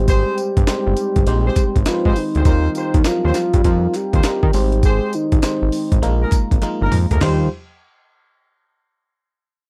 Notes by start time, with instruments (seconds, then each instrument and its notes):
Already playing: analog synth bass G#1, fm electric piano G#3 C4 D#4 G4 C5
0.00 soft synth lead G4
0.08 horn section G4 G#4 C5, kick, closed hi-hat, tambourine
0.38 closed hi-hat, tambourine
0.57 analog synth bass G1, kick, closed hi-hat
0.67 fm electric piano G#3 C4 D#4 G4 C5, snare, clap, closed hi-hat, tambourine
0.87 analog synth bass G1
0.97 closed hi-hat, tambourine
1.16 analog synth bass G1, kick, closed hi-hat
1.26 analog synth bass A#1, fm electric piano G#3 C4 D#4 G4 C5, closed hi-hat
1.45 horn section G4 G#4 C5
1.56 kick, clap, closed hi-hat, tambourine
1.76 analog synth bass G#1, kick, closed hi-hat
1.86 fm electric piano G#3 C4 D#4 G4 B4, soft synth lead F4, snare, clap, closed hi-hat, tambourine
1.94 fm electric piano C5
2.05 analog synth bass G#2, horn section G4 G#4 C5, kick
2.16 soft synth lead D#4, open hi-hat, tambourine
2.35 analog synth bass D2, horn section G4 G#4 C5, closed hi-hat
2.45 analog synth bass D#2, fm electric piano G3 C4 D#4 F4 A#4, horn section F4 G4 C5, kick, closed hi-hat, tambourine
2.75 horn section F4 G4 C5, closed hi-hat, tambourine
2.94 analog synth bass D#2, kick, closed hi-hat
3.04 fm electric piano F#3 C4 D#4 F4 A#4, soft synth lead F4, snare, clap, closed hi-hat, tambourine
3.11 fm electric piano G3
3.24 analog synth bass D#2, horn section F4 G4 C5
3.34 soft synth lead F4, snare, closed hi-hat, tambourine
3.54 analog synth bass G2, kick, closed hi-hat
3.64 analog synth bass F2, fm electric piano G3 C4 D#4 F4 A#4, kick, closed hi-hat
3.94 soft synth lead G4, clap, closed hi-hat, tambourine
4.13 analog synth bass D#2, horn section F4 G4 C5, kick, closed hi-hat
4.23 fm electric piano G3 C4 D#4 F4 A#4, snare, clap, closed hi-hat, tambourine
4.43 analog synth bass D#3, kick
4.53 analog synth bass G#1, fm electric piano G#3 C4 D#4 G4 C5, open hi-hat, tambourine
4.72 closed hi-hat
4.83 horn section G4 G#4 C5, soft synth lead G#4, kick, closed hi-hat, tambourine
5.13 soft synth lead D#4, closed hi-hat, tambourine
5.32 analog synth bass G#1, kick, closed hi-hat
5.43 fm electric piano G#3 C4 D#4 G4 C5, snare, clap, closed hi-hat, tambourine
5.62 analog synth bass G#1
5.72 open hi-hat, tambourine
5.92 analog synth bass G#1, kick, closed hi-hat
6.02 analog synth bass A#1, fm electric piano G#3 A#3 D#4 F4 A#4, closed hi-hat
6.21 horn section D#4 G#4 A#4
6.32 kick, clap, closed hi-hat, tambourine
6.51 analog synth bass G#1, kick, closed hi-hat
6.62 fm electric piano G#3 A#3 D#4 F4 A#4, clap, closed hi-hat, high tom
6.81 analog synth bass G1, horn section D#4 G#4 A#4
6.92 analog synth bass F2, mid tom, open hi-hat
7.11 analog synth bass D2, horn section D#4 G#4 A#4, closed hi-hat, floor tom
7.21 analog synth bass D#2, fm electric piano G3 D#4 F4 C5, horn section F4 G4 C5, soft synth lead G4, snare, clap, floor tom, crash